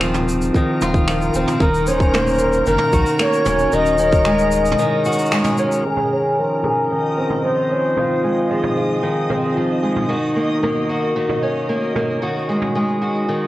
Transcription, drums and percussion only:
0.01 finger snap medium
0.01 shaker medium
0.14 mid tom medium
0.14 shaker soft
0.29 shaker medium
0.42 shaker medium
0.54 kick medium
0.54 shaker medium
0.82 mid tom medium
0.82 shaker medium
0.94 kick medium
0.94 shaker soft
1.08 finger snap medium
1.08 shaker medium
1.22 shaker soft
1.34 shaker medium
1.48 mid tom medium
1.48 shaker medium
1.60 kick loud
1.60 shaker soft
1.74 shaker soft
1.87 shaker medium
2.00 kick loud
2.00 shaker soft
2.13 finger snap medium
2.13 mid tom medium
2.13 shaker soft
2.27 shaker soft
2.29 shaker soft
2.31 shaker soft
2.33 shaker soft
2.35 shaker soft
2.37 shaker soft
2.37 shaker medium
2.53 shaker soft
2.66 shaker soft
2.78 mid tom medium
2.93 kick medium
2.93 shaker medium
3.06 shaker soft
3.19 finger snap medium
3.19 shaker soft
3.33 shaker soft
3.45 mid tom medium
3.45 shaker medium
3.59 shaker soft
3.72 shaker soft
3.86 shaker soft
3.98 shaker medium
4.12 kick loud
4.12 shaker soft
4.25 finger snap medium
4.25 shaker medium
4.39 shaker soft
4.52 shaker medium
4.65 shaker medium
4.71 mid tom medium
4.78 shaker medium
5.05 shaker medium
5.12 shaker medium
5.19 shaker medium
5.26 shaker soft
5.32 finger snap medium
5.32 shaker medium
5.44 mid tom medium
5.44 shaker soft
5.57 shaker medium
5.72 shaker medium
5.84 shaker soft
5.97 mid tom medium
6.11 shaker medium
6.23 shaker soft
6.37 shaker soft
6.51 shaker soft
6.63 mid tom medium
6.63 shaker medium
6.77 shaker soft
6.84 shaker soft
6.91 shaker soft
6.97 shaker soft
7.17 shaker medium
7.30 mid tom medium
7.43 shaker medium
7.57 shaker soft
7.70 shaker medium
7.84 shaker soft
7.97 mid tom medium
7.97 shaker medium
8.11 shaker soft
8.24 shaker medium
8.38 shaker soft
8.50 shaker soft
8.63 mid tom medium
8.63 shaker soft
8.77 shaker medium
8.91 shaker soft
9.30 mid tom medium
9.30 shaker medium
9.43 shaker soft
9.55 shaker soft
9.70 shaker soft
9.83 shaker medium
9.96 mid tom medium
10.15 shaker soft
10.19 shaker soft
10.23 shaker soft
10.28 shaker soft
10.33 shaker soft
10.37 shaker medium
10.40 shaker medium
10.42 shaker soft
10.44 shaker soft
10.63 mid tom medium
10.63 shaker soft
10.63 shaker medium
10.76 shaker soft
10.90 shaker medium
11.02 shaker soft
11.16 shaker medium
11.29 mid tom medium
11.43 shaker medium
11.57 shaker soft
11.70 shaker medium
11.82 shaker soft
11.95 mid tom medium
11.95 shaker medium
12.10 shaker soft
12.22 shaker medium
12.36 shaker soft
12.39 shaker soft
12.43 shaker soft
12.46 shaker soft
12.49 shaker soft
12.49 shaker medium
12.52 shaker soft
12.59 shaker soft
12.61 mid tom medium
12.61 shaker soft
12.75 shaker soft
12.88 shaker soft
13.02 shaker medium
13.15 shaker soft

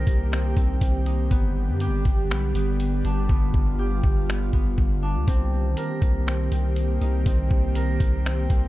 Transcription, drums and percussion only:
0.07 kick loud
0.07 closed hi-hat medium
0.33 finger snap loud
0.57 kick medium
0.57 closed hi-hat medium
0.81 kick medium
0.81 closed hi-hat medium
1.06 closed hi-hat medium
1.31 kick loud
1.31 closed hi-hat medium
1.80 closed hi-hat medium
2.05 kick loud
2.05 closed hi-hat medium
2.31 finger snap loud
2.55 closed hi-hat medium
2.80 closed hi-hat medium
3.05 closed hi-hat medium
3.29 kick loud
3.54 kick medium
4.04 kick loud
4.30 finger snap loud
4.53 kick medium
4.78 kick medium
5.28 kick loud
5.28 closed hi-hat medium
5.77 closed hi-hat medium
6.02 kick loud
6.02 closed hi-hat medium
6.28 finger snap loud
6.52 closed hi-hat medium
6.76 closed hi-hat medium
7.01 closed hi-hat medium
7.26 kick loud
7.26 closed hi-hat medium
7.51 kick medium
7.75 closed hi-hat medium
8.00 kick loud
8.00 closed hi-hat medium
8.26 finger snap loud
8.50 kick medium
8.50 closed hi-hat medium

